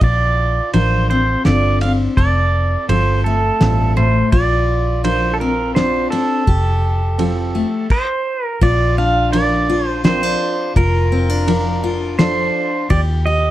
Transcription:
0.01 0.59 A#1 medium
0.01 0.66 A#2 medium
0.01 2.18 F4 medium
0.01 0.70 D5 medium
0.01 kick loud
0.01 ride medium
0.73 1.35 A1 medium
0.73 1.38 F3 medium
0.73 1.20 D4 medium
0.73 1.21 F4 medium
0.73 1.21 A#4 medium
0.73 1.09 C5 medium
0.73 ride medium
1.10 1.82 C4 medium
1.10 1.45 C5 medium
1.45 2.07 G1 medium
1.45 2.10 F2 medium
1.45 1.92 D4 medium
1.45 2.14 D4 medium
1.45 1.92 F4 medium
1.45 1.92 A4 medium
1.45 1.81 D5 medium
1.45 snare medium
1.45 ride soft
1.81 3.26 C4 medium
1.81 1.91 F5 medium
1.81 ride medium
2.17 2.75 F1 medium
2.17 2.82 F2 medium
2.17 4.29 A4 medium
2.17 2.91 D5 loud
2.17 kick loud
2.17 ride medium
2.88 3.50 G1 medium
2.88 3.54 F3 medium
2.88 3.35 C4 medium
2.88 3.36 F4 medium
2.88 3.36 A4 medium
2.88 3.26 C5 medium
2.88 ride medium
3.24 4.29 A3 medium
3.24 3.92 A4 medium
3.60 4.22 A1 medium
3.60 3.96 G2 medium
3.60 4.07 C4 medium
3.60 4.07 F4 medium
3.60 4.07 A4 medium
3.60 snare medium
3.60 ride medium
3.97 4.32 A2 medium
3.97 4.30 C5 medium
4.32 6.06 A#1 medium
4.32 4.97 A#2 medium
4.32 6.48 F4 medium
4.32 5.04 D5 medium
4.32 kick loud
4.32 ride medium
5.04 5.68 F3 medium
5.04 5.51 D4 medium
5.04 5.51 F4 medium
5.04 5.51 A#4 medium
5.04 5.34 C5 medium
5.04 ride medium
5.34 5.40 A4 medium
5.40 6.12 C4 medium
5.40 5.75 A#4 medium
5.75 6.40 F2 medium
5.75 6.22 D4 medium
5.75 6.44 D4 medium
5.75 6.22 F4 medium
5.75 6.10 C5 medium
5.75 6.22 C5 medium
5.75 snare medium
5.75 ride soft
6.10 6.44 C4 medium
6.10 8.22 A4 medium
6.10 ride medium
6.47 7.63 F1 medium
6.47 7.12 F2 medium
6.47 7.86 G4 medium
6.47 kick medium
6.47 ride medium
7.18 7.83 F3 medium
7.18 7.65 C4 medium
7.18 7.66 F4 medium
7.18 7.66 A4 medium
7.18 ride medium
7.55 7.86 A3 medium
7.90 8.46 C5 medium
7.90 kick medium
7.90 crash medium
8.46 8.65 A#4 medium
8.61 10.35 A#1 medium
8.61 9.26 A#2 medium
8.61 9.69 F4 medium
8.61 8.96 D5 medium
8.61 kick loud
8.61 ride medium
8.98 10.04 D4 medium
8.98 9.31 F5 medium
9.33 9.98 F3 medium
9.33 9.80 D4 medium
9.33 9.80 F4 medium
9.33 9.80 A#4 medium
9.33 9.88 D5 medium
9.33 ride medium
9.70 10.76 F4 medium
9.88 10.05 C5 medium
10.04 10.69 F3 medium
10.04 10.23 C4 medium
10.04 10.51 D4 medium
10.04 10.51 F4 medium
10.04 10.51 A#4 medium
10.04 10.72 C5 medium
10.04 snare medium
10.04 ride medium
10.23 10.76 D4 soft
10.76 12.49 F1 medium
10.76 11.41 A#2 medium
10.76 11.82 F4 medium
10.76 12.15 A#4 medium
10.76 kick loud
10.76 ride medium
11.12 11.29 C4 medium
11.29 12.18 D4 soft
11.47 12.12 F3 medium
11.47 11.94 D4 medium
11.47 11.94 F4 medium
11.47 11.94 A#4 medium
11.47 ride medium
11.84 12.90 F4 medium
12.19 12.83 F3 medium
12.19 12.65 D4 medium
12.19 12.86 D4 medium
12.19 12.66 F4 medium
12.19 12.66 A4 medium
12.19 12.92 C5 medium
12.19 snare medium
12.19 ride medium
12.90 13.51 D#2 medium
12.90 13.51 D#3 medium
12.90 13.26 G4 medium
12.90 13.00 D5 loud
12.90 kick loud
12.90 ride medium
13.26 13.51 G4 medium
13.26 13.51 D#5 medium

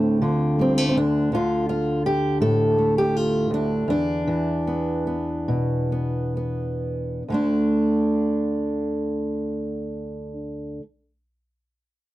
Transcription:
0.00 0.95 D2 medium
0.00 0.21 A2 medium
0.00 0.20 D3 medium
0.00 0.59 A3 soft
0.00 0.60 C4 soft
0.22 1.32 D3 medium
0.22 0.92 F4 soft
0.59 0.78 G3 soft
0.59 0.87 C4 medium
0.78 0.96 A3 soft
0.89 0.96 C4 medium
0.96 3.49 D2 medium
0.96 1.33 D4 medium
1.33 4.27 D3 medium
1.33 1.68 F4 medium
1.69 2.05 F4 medium
2.06 2.41 G4 medium
2.41 3.89 A2 medium
2.41 2.96 A4 medium
2.78 3.89 A3 soft
2.98 3.16 G4 medium
3.16 3.52 F4 medium
3.51 3.87 D2 medium
3.51 3.89 D4 medium
3.88 7.21 E2 medium
3.88 7.28 D4 medium
4.27 7.22 E3 medium
4.67 5.06 B3 soft
5.07 5.91 B3 soft
5.48 7.22 B2 soft
5.92 6.36 B3 soft
6.37 7.23 B3 soft
7.28 10.78 D2 soft
7.28 10.80 D3 soft
7.28 10.82 A3 soft
7.34 10.32 D4 medium

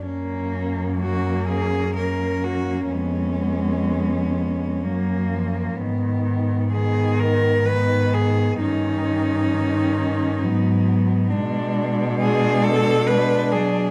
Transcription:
0.04 2.88 F#2 soft
0.04 0.98 A#3 soft
0.04 0.99 C#4 soft
1.00 1.95 A#3 soft
1.00 1.95 C#4 soft
1.00 1.46 F#4 medium
1.49 1.96 G#4 medium
1.96 2.94 A#3 soft
1.96 2.92 C#4 soft
1.96 2.46 A#4 medium
2.44 2.89 F#4 medium
2.89 4.87 F2 soft
2.89 4.86 G#3 soft
2.89 4.84 B3 soft
2.89 5.75 C#4 medium
4.84 5.79 F#2 soft
4.84 5.33 F#3 soft
4.84 5.78 A#3 soft
5.34 5.82 F3 soft
5.77 8.56 G#2 medium
5.77 6.73 D#3 soft
5.77 6.72 B3 soft
6.72 7.66 D#3 medium
6.72 7.66 B3 medium
6.72 7.21 G#4 medium
7.20 7.67 A#4 medium
7.65 8.59 D#3 medium
7.65 8.15 B4 medium
7.69 8.60 B3 medium
8.14 8.60 G#4 medium
8.60 10.43 G2 medium
8.60 9.49 D#3 soft
8.60 10.46 C#4 medium
8.60 11.28 D#4 medium
9.51 10.43 D#3 medium
10.41 11.33 G#2 medium
10.41 11.31 F#3 medium
10.41 11.31 B3 medium
11.30 13.91 B2 medium
11.30 12.19 G#3 medium
11.30 12.19 D4 medium
12.20 13.06 G#3 medium
12.20 13.06 D4 medium
12.20 12.65 G#4 medium
12.63 13.09 A4 loud
13.07 13.54 G#3 medium
13.07 13.91 D4 medium
13.07 13.53 B4 medium
13.52 13.91 F#3 soft
13.52 13.91 G#4 medium

